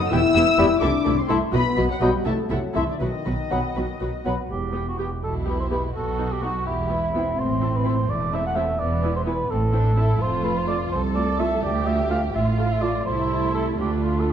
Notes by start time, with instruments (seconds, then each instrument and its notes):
0.10 double bass section E1, cello section E2, viola section B3 E4, french horn section E4, violin section G4 G5 E6
0.34 double bass section E1, cello section E2, viola section B3 E4, violin section G4 G5
0.58 double bass section E1, cello section E2, bassoon G3, viola section B3 E4, violin section G4 G5, clarinet G4, cor anglais E5, flute section B5
0.81 double bass section C2, cello section C3, viola section A3 E4, french horn section D4, violin section A4 E5 D6
1.05 double bass section C2, cello section C3, viola section A3 E4, violin section A4 E5
1.19 french horn section C4, violin section C6
1.28 double bass section C2, cello section C3, viola section A3 E4, bassoon A3, clarinet E4, violin section A4 E5, cor anglais E5, flute section C6
1.52 double bass section B1, cello section B2, viola section F#3 F#4, french horn section B3, violin section B4 D#5 B5
1.77 double bass section B1, cello section B2, viola section F#3 F#4, violin section B4 D#5
1.89 french horn section F#3, violin section F#5
1.99 double bass section B1, cello section B2, viola section F#3 F#4, bassoon F#3, french horn section G3, clarinet F#4, violin section B4 D#5 G5, cor anglais D#5, flute section B5
2.24 double bass section C2, cello section C3, french horn section A3, viola section A3 E4, violin section A4 E5 A5
2.49 double bass section C2, cello section C3, french horn section F#3, viola section A3 E4, violin section A4 E5 F#5
2.74 double bass section C2, cello section C3, french horn section E3, viola section A3 E4, bassoon A3, clarinet E4, violin section A4 E5, cor anglais E5, flute section C6
2.89 french horn section D3, violin section D5
3.00 double bass section B1, cello section B2, french horn section D#3, viola section F#3 F#4, violin section B4 D#5
3.25 double bass section B1, cello section B2, viola section F#3 F#4, violin section B4
3.50 double bass section B1, cello section B2, viola section F#3 F#4, bassoon F#3, clarinet B3, violin section B4, cor anglais F#5, flute section B5
3.75 double bass section B1, cello section B2, viola section F#3 F#4, violin section B4
4.00 double bass section B1, cello section B2, viola section F#3 F#4, violin section B4
4.24 double bass section B1, cello section B2, viola section F#3 F#4, bassoon F#3, clarinet B3, violin section B4, cor anglais F#5, flute section B5
4.50 double bass section E1, cello section E2, cor anglais G4
4.73 viola section B3 G4, violin section G5
4.88 cor anglais F#4
4.99 viola section B3 G4, cor anglais G4, violin section G5
5.23 double bass section B1, cello section B2, violin section E4, cor anglais A4
5.45 viola section B3 G4, cor anglais B4, violin section G5
5.60 cor anglais C5
5.71 viola section B3 G4, cor anglais B4, violin section G5
5.94 double bass section B1, cello section B2, violin section F#4, cor anglais A4
6.19 viola section B3 D#4, violin section F#5
6.32 cor anglais G4
6.42 viola section B3 D#4, cor anglais F#4, violin section F#5
6.65 double bass section E1, cello section E2, cor anglais E4, violin section G4
6.90 viola section B3 E4, violin section E4 G5
7.14 viola section B3 E4, violin section C4 G5
7.38 double bass section A1, cello section A2, cor anglais C5
7.61 viola section C4 E4, violin section A5
7.76 cor anglais B4
7.84 viola section C4 E4, cor anglais C5, violin section A5
8.09 double bass section E1, cello section E2, violin section A3, cor anglais D5
8.33 viola section C4 E4, cor anglais E5, violin section A5
8.46 cor anglais F#5
8.55 viola section C4 E4, cor anglais E5, violin section A5
8.79 double bass section E1, cello section E2, violin section B3, cor anglais D5
9.03 viola section B3 E4, violin section G#5
9.16 cor anglais C5
9.26 viola section B3 E4, cor anglais B4, violin section G#5
9.49 double bass section A1, cello section A2, violin section C4, cor anglais A4
9.73 viola section C4 E4, violin section D4 A5
9.96 viola section C4 E4, violin section E4 A5
10.19 double bass section F1, cello section F2, violin section F4, cor anglais C5
10.43 viola section A3 F4, cor anglais B4, violin section A5
10.57 cor anglais C5
10.67 viola section A3 F4, cor anglais D5, violin section A5
10.91 double bass section C2, cello section C2, violin section A4, cor anglais C5
11.15 viola section A3 F4, cor anglais D5, violin section A5
11.39 viola section A3 F4, cor anglais E5, violin section A5
11.63 double bass section D2, cello section D2, violin section G4, cor anglais D5
11.86 viola section A3 F4, cor anglais E5, violin section A5
12.09 viola section A3 F4, cor anglais F5, violin section A5
12.34 double bass section A1, cello section A2, violin section F4, cor anglais E5
12.58 viola section A3 F4, cor anglais F5, violin section A5
12.72 cor anglais E5
12.82 viola section A3 F4, cor anglais D5, violin section A5
13.05 double bass section C2, cello section C2, viola section A3 E4, violin section E4 A5, cor anglais C5
13.55 cor anglais A4
13.79 double bass section D2, cello section D2, viola section A3 F4, violin section D4 B5, cor anglais G4
14.05 cor anglais F4
14.20 cor anglais A4